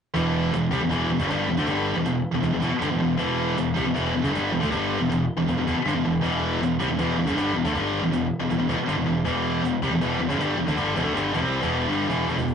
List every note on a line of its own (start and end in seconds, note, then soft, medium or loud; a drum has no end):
0.14 0.51 E1 medium
0.14 0.51 E2 loud
0.14 0.52 B2 loud
0.14 0.53 E3 loud
0.14 cajon bass medium
0.52 0.71 E1 medium
0.52 0.68 E2 medium
0.52 0.68 B2 medium
0.52 cajon slap loud
0.71 0.80 C2 loud
0.71 0.81 C3 loud
0.71 0.81 G3 loud
0.71 cajon bass loud
0.81 0.90 E1 medium
0.81 0.90 E2 medium
0.81 0.90 B2 medium
0.90 1.08 E1 loud
0.90 1.10 E2 loud
0.90 1.10 B2 loud
0.90 1.10 E3 loud
0.90 cajon bass loud
1.08 1.18 E1 medium
1.08 1.20 E2 medium
1.08 1.21 B2 medium
1.20 1.29 F#1 medium
1.20 1.29 F#2 medium
1.20 1.29 C#3 medium
1.20 cajon bass loud
1.29 1.47 G1 medium
1.29 1.48 G2 medium
1.29 1.48 D3 medium
1.29 1.48 G3 loud
1.29 cajon slap loud
1.49 1.57 E1 medium
1.49 1.58 E2 medium
1.49 1.58 B2 medium
1.57 1.66 D2 loud
1.57 1.67 D3 medium
1.57 1.68 A3 loud
1.57 cajon bass loud
1.67 1.94 G1 medium
1.67 1.96 G2 loud
1.67 1.96 D3 loud
1.67 1.96 G3 loud
1.67 cajon bass medium
1.96 2.04 E1 medium
1.96 2.05 E2 medium
1.96 2.05 B2 medium
2.05 2.23 E1 medium
2.05 2.21 E2 medium
2.05 2.21 B2 medium
2.05 cajon slap loud
2.34 2.42 E1 medium
2.34 2.42 E2 medium
2.34 2.43 B2 medium
2.42 2.52 E1 medium
2.42 2.53 E2 medium
2.42 2.53 B2 medium
2.42 cajon bass medium
2.54 2.62 E1 medium
2.54 2.61 E2 medium
2.54 2.62 B2 medium
2.62 2.71 E1 medium
2.62 2.70 E2 medium
2.62 2.72 B2 loud
2.62 cajon bass loud
2.71 muted distorted electric guitar stroke medium
2.71 muted picked electric bass stroke soft
2.81 2.90 G1 loud
2.81 2.90 G2 medium
2.81 2.90 D3 loud
2.81 cajon slap loud
2.90 3.00 E1 medium
2.90 2.99 E2 medium
2.90 2.99 B2 medium
3.00 3.19 E1 medium
3.00 3.15 E2 medium
3.00 3.15 B2 medium
3.17 3.55 E1 loud
3.17 3.56 E2 loud
3.17 3.56 B2 loud
3.17 3.56 E3 loud
3.17 cajon bass loud
3.57 3.75 E1 medium
3.57 3.72 E2 medium
3.57 3.72 B2 medium
3.57 cajon slap loud
3.76 3.86 C2 loud
3.76 3.85 C3 medium
3.76 3.85 G3 loud
3.76 cajon bass loud
3.85 3.95 E1 medium
3.85 3.93 E2 medium
3.85 3.93 B2 medium
3.94 4.13 E1 loud
3.94 4.12 E2 medium
3.94 4.13 B2 loud
3.94 4.14 E3 loud
3.94 cajon bass loud
4.13 4.23 E1 medium
4.13 4.23 E2 medium
4.13 4.23 B2 medium
4.23 4.33 F#1 loud
4.23 4.32 F#2 medium
4.23 4.32 C#3 medium
4.23 cajon bass loud
4.33 4.51 G1 loud
4.33 4.51 G2 loud
4.33 4.51 D3 medium
4.33 4.52 G3 loud
4.33 cajon slap loud
4.52 4.61 E1 medium
4.52 4.62 E2 medium
4.52 4.60 B2 medium
4.60 4.71 D2 loud
4.60 4.69 D3 medium
4.60 4.70 A3 medium
4.60 cajon bass loud
4.70 4.98 G1 medium
4.70 4.98 G2 loud
4.70 4.99 D3 loud
4.70 4.99 G3 loud
4.70 cajon bass loud
5.00 5.09 E1 medium
5.00 5.08 E2 medium
5.00 5.08 B2 medium
5.09 5.27 E1 medium
5.09 5.24 E2 medium
5.09 5.25 B2 medium
5.09 cajon slap loud
5.37 5.47 E1 medium
5.37 5.47 E2 medium
5.37 5.47 B2 medium
5.48 5.57 E1 medium
5.48 5.56 E2 medium
5.48 5.57 B2 medium
5.48 cajon bass loud
5.57 5.66 E1 medium
5.57 5.66 E2 medium
5.57 5.66 B2 medium
5.67 5.76 E1 medium
5.67 5.75 E2 loud
5.67 5.76 B2 loud
5.67 cajon bass loud
5.76 muted distorted electric guitar stroke medium
5.76 muted picked electric bass stroke soft
5.85 5.94 G1 medium
5.85 5.94 G2 loud
5.85 5.94 D3 loud
5.85 cajon slap loud
5.95 6.04 E1 medium
5.95 6.04 E2 medium
5.95 6.04 B2 medium
6.05 6.22 E1 medium
6.05 6.20 E2 medium
6.05 6.20 B2 medium
6.22 6.59 E1 medium
6.22 6.59 E2 loud
6.22 6.59 B2 loud
6.22 6.60 E3 loud
6.22 cajon bass medium
6.61 6.79 E1 medium
6.61 6.76 E2 medium
6.61 6.76 B2 medium
6.61 cajon slap loud
6.80 6.87 C2 loud
6.80 6.89 C3 medium
6.80 6.89 G3 loud
6.80 cajon bass loud
6.88 6.97 E1 medium
6.88 6.98 E2 medium
6.88 6.98 B2 medium
6.99 7.17 E1 loud
6.99 7.17 E2 medium
6.99 7.17 B2 loud
6.99 7.18 E3 medium
6.99 cajon bass loud
7.17 7.26 E1 medium
7.17 7.25 E2 medium
7.17 7.26 B2 medium
7.26 7.36 F#1 loud
7.26 7.35 F#2 medium
7.26 7.36 C#3 loud
7.26 cajon bass loud
7.36 7.53 G1 medium
7.36 7.54 G2 medium
7.36 7.54 D3 loud
7.36 7.55 G3 loud
7.36 cajon slap loud
7.54 7.64 E1 medium
7.54 7.64 E2 medium
7.54 7.64 B2 medium
7.65 7.74 D2 loud
7.65 7.72 D3 medium
7.65 7.74 A3 loud
7.65 cajon bass loud
7.73 8.01 G1 loud
7.73 8.02 G2 loud
7.73 8.02 D3 loud
7.73 8.02 G3 loud
7.73 cajon bass medium
8.02 8.12 E1 medium
8.02 8.11 E2 medium
8.02 8.11 B2 medium
8.12 8.30 E1 medium
8.12 8.28 E2 medium
8.12 8.28 B2 medium
8.12 cajon slap loud
8.40 8.50 E1 medium
8.40 8.48 E2 medium
8.40 8.49 B2 medium
8.49 8.58 E1 medium
8.49 8.58 E2 medium
8.49 8.59 B2 medium
8.49 cajon bass medium
8.58 8.68 E1 medium
8.58 8.68 E2 medium
8.58 8.69 B2 medium
8.69 8.77 E1 loud
8.69 8.78 E2 medium
8.69 8.78 B2 loud
8.69 cajon bass loud
8.77 muted picked electric bass stroke soft
8.77 muted distorted electric guitar stroke medium
8.87 8.97 G1 loud
8.87 8.96 G2 medium
8.87 8.97 D3 loud
8.87 cajon slap loud
8.97 9.06 E1 medium
8.97 9.05 E2 medium
8.97 9.05 B2 medium
9.06 9.24 E1 medium
9.06 9.22 E2 medium
9.06 9.22 B2 medium
9.25 9.61 E1 loud
9.25 9.62 E2 medium
9.25 9.62 B2 loud
9.25 9.63 E3 loud
9.25 cajon bass loud
9.63 9.81 E1 medium
9.63 9.78 E2 medium
9.63 9.79 B2 medium
9.63 cajon slap loud
9.82 9.90 C2 loud
9.82 9.92 C3 medium
9.82 9.92 G3 loud
9.82 cajon bass loud
9.90 10.00 E1 medium
9.90 10.00 E2 medium
9.90 10.01 B2 medium
10.01 10.18 E1 loud
10.01 10.18 E2 loud
10.01 10.19 B2 loud
10.01 10.20 E3 medium
10.01 cajon bass loud
10.19 10.29 E1 medium
10.19 10.28 E2 medium
10.19 10.29 B2 medium
10.29 10.38 F#1 loud
10.29 10.38 F#2 loud
10.29 10.38 C#3 medium
10.29 cajon bass loud
10.38 10.56 G1 medium
10.38 10.57 G2 medium
10.38 10.57 D3 medium
10.38 10.58 G3 loud
10.38 cajon slap loud
10.57 10.66 E1 medium
10.57 10.67 E2 medium
10.57 10.66 B2 medium
10.67 10.77 D2 loud
10.67 10.75 D3 medium
10.67 10.77 A3 medium
10.67 cajon bass loud
10.76 10.95 G1 medium
10.76 10.94 G2 loud
10.76 10.95 D3 loud
10.76 10.96 G3 loud
10.76 cajon bass loud
10.95 11.04 E1 loud
10.95 11.04 E2 medium
10.95 11.03 B2 medium
10.95 cajon bass medium
11.03 11.13 D2 loud
11.03 11.13 D3 medium
11.03 11.14 A3 medium
11.14 11.32 G1 loud
11.14 11.32 G2 medium
11.14 11.33 D3 loud
11.14 11.33 G3 loud
11.14 cajon slap loud
11.33 11.41 E1 medium
11.33 11.42 E2 medium
11.33 11.42 B2 loud
11.33 cajon bass loud
11.42 11.60 C2 medium
11.42 11.61 C3 medium
11.42 11.61 G3 medium
11.42 11.62 C4 loud
11.61 11.89 E1 loud
11.61 11.88 E2 medium
11.61 11.89 B2 medium
11.61 11.89 E3 loud
11.61 cajon bass loud
11.89 12.08 G1 medium
11.89 12.08 G2 medium
11.89 12.08 D3 medium
11.89 12.09 G3 loud
11.89 cajon slap medium
12.09 12.27 E1 medium
12.09 12.27 E2 medium
12.09 12.28 B2 medium
12.09 12.28 E3 loud
12.09 cajon bass loud
12.28 12.38 E1 medium
12.28 12.37 E2 loud
12.28 12.37 B2 loud
12.28 cajon bass medium
12.38 12.54 E1 medium
12.38 12.53 E2 medium
12.38 12.53 B2 medium
12.38 cajon bass medium
12.48 cajon bass medium